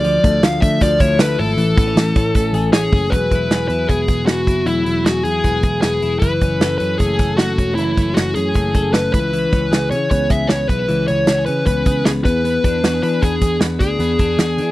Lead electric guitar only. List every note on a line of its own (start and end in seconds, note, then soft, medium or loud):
0.00 0.44 D5 loud
0.44 0.61 F5 loud
0.61 0.82 E5 loud
0.82 1.00 D5 loud
1.00 1.20 C#5 loud
1.20 1.40 B4 loud
1.39 2.70 A4 loud
2.73 3.13 G#4 loud
3.10 3.67 B4 medium
3.68 3.89 B4 medium
3.88 4.26 G#4 medium
4.26 4.67 F#4 medium
4.66 5.07 E4 medium
5.05 5.24 F#4 medium
5.24 5.80 G#4 medium
5.81 6.19 G#4 medium
6.19 6.77 B4 medium
6.78 6.98 B4 medium
6.98 7.39 G#4 medium
7.37 7.75 F#4 medium
7.75 8.17 E4 medium
8.14 8.34 F#4 medium
8.34 8.94 G#4 medium
8.93 9.11 B4 medium
9.13 9.90 B4 medium
9.91 10.10 C#5 medium
10.11 10.31 C#5 medium
10.31 10.51 E5 medium
10.48 10.68 C#5 medium
10.68 11.07 B4 medium
11.08 11.45 C#5 medium
11.46 11.65 B4 medium
11.66 12.07 B4 medium
12.05 12.10 G#4 medium
12.25 13.02 B4 loud
13.03 13.23 B4 medium
13.22 13.58 G#4 medium
13.79 14.72 G#4 medium